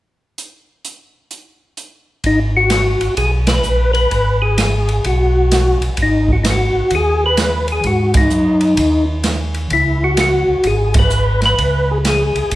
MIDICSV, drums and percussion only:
0, 0, Header, 1, 2, 480
1, 0, Start_track
1, 0, Key_signature, 5, "minor"
1, 0, Tempo, 466926
1, 387, Time_signature, 4, 2, 24, 8
1, 12903, End_track
2, 0, Start_track
2, 0, Title_t, "Drums"
2, 392, Note_on_c, 9, 42, 51
2, 494, Note_off_c, 9, 42, 0
2, 870, Note_on_c, 9, 42, 55
2, 973, Note_off_c, 9, 42, 0
2, 1344, Note_on_c, 9, 42, 53
2, 1447, Note_off_c, 9, 42, 0
2, 1822, Note_on_c, 9, 42, 53
2, 1925, Note_off_c, 9, 42, 0
2, 2300, Note_on_c, 9, 51, 51
2, 2303, Note_on_c, 9, 36, 30
2, 2402, Note_off_c, 9, 51, 0
2, 2406, Note_off_c, 9, 36, 0
2, 2774, Note_on_c, 9, 44, 51
2, 2774, Note_on_c, 9, 51, 61
2, 2779, Note_on_c, 9, 38, 65
2, 2877, Note_off_c, 9, 44, 0
2, 2877, Note_off_c, 9, 51, 0
2, 2882, Note_off_c, 9, 38, 0
2, 3091, Note_on_c, 9, 51, 45
2, 3194, Note_off_c, 9, 51, 0
2, 3258, Note_on_c, 9, 51, 60
2, 3263, Note_on_c, 9, 36, 32
2, 3361, Note_off_c, 9, 51, 0
2, 3366, Note_off_c, 9, 36, 0
2, 3565, Note_on_c, 9, 51, 65
2, 3570, Note_on_c, 9, 38, 73
2, 3667, Note_off_c, 9, 51, 0
2, 3673, Note_off_c, 9, 38, 0
2, 3734, Note_on_c, 9, 44, 59
2, 3837, Note_off_c, 9, 44, 0
2, 4055, Note_on_c, 9, 51, 41
2, 4158, Note_off_c, 9, 51, 0
2, 4227, Note_on_c, 9, 36, 32
2, 4227, Note_on_c, 9, 51, 49
2, 4329, Note_off_c, 9, 51, 0
2, 4330, Note_off_c, 9, 36, 0
2, 4705, Note_on_c, 9, 44, 60
2, 4705, Note_on_c, 9, 51, 68
2, 4710, Note_on_c, 9, 38, 67
2, 4808, Note_off_c, 9, 44, 0
2, 4808, Note_off_c, 9, 51, 0
2, 4813, Note_off_c, 9, 38, 0
2, 5022, Note_on_c, 9, 51, 43
2, 5125, Note_off_c, 9, 51, 0
2, 5185, Note_on_c, 9, 51, 58
2, 5191, Note_on_c, 9, 36, 30
2, 5288, Note_off_c, 9, 51, 0
2, 5293, Note_off_c, 9, 36, 0
2, 5669, Note_on_c, 9, 44, 57
2, 5669, Note_on_c, 9, 51, 66
2, 5674, Note_on_c, 9, 38, 61
2, 5772, Note_off_c, 9, 44, 0
2, 5772, Note_off_c, 9, 51, 0
2, 5777, Note_off_c, 9, 38, 0
2, 5981, Note_on_c, 9, 51, 43
2, 6084, Note_off_c, 9, 51, 0
2, 6137, Note_on_c, 9, 51, 53
2, 6146, Note_on_c, 9, 36, 30
2, 6240, Note_off_c, 9, 51, 0
2, 6249, Note_off_c, 9, 36, 0
2, 6459, Note_on_c, 9, 36, 43
2, 6562, Note_off_c, 9, 36, 0
2, 6626, Note_on_c, 9, 44, 61
2, 6626, Note_on_c, 9, 51, 65
2, 6631, Note_on_c, 9, 38, 67
2, 6728, Note_off_c, 9, 44, 0
2, 6728, Note_off_c, 9, 51, 0
2, 6734, Note_off_c, 9, 38, 0
2, 7098, Note_on_c, 9, 51, 54
2, 7106, Note_on_c, 9, 36, 31
2, 7201, Note_off_c, 9, 51, 0
2, 7208, Note_off_c, 9, 36, 0
2, 7579, Note_on_c, 9, 44, 57
2, 7579, Note_on_c, 9, 51, 65
2, 7584, Note_on_c, 9, 38, 67
2, 7682, Note_off_c, 9, 44, 0
2, 7682, Note_off_c, 9, 51, 0
2, 7687, Note_off_c, 9, 38, 0
2, 7892, Note_on_c, 9, 51, 42
2, 7995, Note_off_c, 9, 51, 0
2, 8055, Note_on_c, 9, 51, 47
2, 8064, Note_on_c, 9, 36, 31
2, 8158, Note_off_c, 9, 51, 0
2, 8167, Note_off_c, 9, 36, 0
2, 8368, Note_on_c, 9, 51, 72
2, 8376, Note_on_c, 9, 36, 75
2, 8470, Note_off_c, 9, 51, 0
2, 8479, Note_off_c, 9, 36, 0
2, 8535, Note_on_c, 9, 44, 54
2, 8638, Note_off_c, 9, 44, 0
2, 8847, Note_on_c, 9, 51, 45
2, 8950, Note_off_c, 9, 51, 0
2, 9017, Note_on_c, 9, 51, 62
2, 9023, Note_on_c, 9, 36, 33
2, 9120, Note_off_c, 9, 51, 0
2, 9126, Note_off_c, 9, 36, 0
2, 9494, Note_on_c, 9, 44, 49
2, 9494, Note_on_c, 9, 51, 64
2, 9499, Note_on_c, 9, 38, 63
2, 9597, Note_off_c, 9, 44, 0
2, 9597, Note_off_c, 9, 51, 0
2, 9602, Note_off_c, 9, 38, 0
2, 9811, Note_on_c, 9, 51, 41
2, 9914, Note_off_c, 9, 51, 0
2, 9974, Note_on_c, 9, 51, 51
2, 9983, Note_on_c, 9, 36, 31
2, 10077, Note_off_c, 9, 51, 0
2, 10086, Note_off_c, 9, 36, 0
2, 10455, Note_on_c, 9, 44, 52
2, 10455, Note_on_c, 9, 51, 68
2, 10460, Note_on_c, 9, 38, 65
2, 10558, Note_off_c, 9, 44, 0
2, 10558, Note_off_c, 9, 51, 0
2, 10563, Note_off_c, 9, 38, 0
2, 10933, Note_on_c, 9, 51, 54
2, 10944, Note_on_c, 9, 36, 32
2, 11036, Note_off_c, 9, 51, 0
2, 11047, Note_off_c, 9, 36, 0
2, 11247, Note_on_c, 9, 51, 72
2, 11258, Note_on_c, 9, 36, 78
2, 11350, Note_off_c, 9, 51, 0
2, 11361, Note_off_c, 9, 36, 0
2, 11412, Note_on_c, 9, 44, 53
2, 11514, Note_off_c, 9, 44, 0
2, 11735, Note_on_c, 9, 51, 41
2, 11740, Note_on_c, 9, 38, 41
2, 11838, Note_off_c, 9, 51, 0
2, 11843, Note_off_c, 9, 38, 0
2, 11909, Note_on_c, 9, 51, 51
2, 11910, Note_on_c, 9, 36, 30
2, 12012, Note_off_c, 9, 51, 0
2, 12013, Note_off_c, 9, 36, 0
2, 12384, Note_on_c, 9, 44, 52
2, 12384, Note_on_c, 9, 51, 67
2, 12389, Note_on_c, 9, 38, 66
2, 12487, Note_off_c, 9, 44, 0
2, 12487, Note_off_c, 9, 51, 0
2, 12492, Note_off_c, 9, 38, 0
2, 12701, Note_on_c, 9, 51, 42
2, 12804, Note_off_c, 9, 51, 0
2, 12863, Note_on_c, 9, 51, 59
2, 12870, Note_on_c, 9, 36, 33
2, 12903, Note_off_c, 9, 36, 0
2, 12903, Note_off_c, 9, 51, 0
2, 12903, End_track
0, 0, End_of_file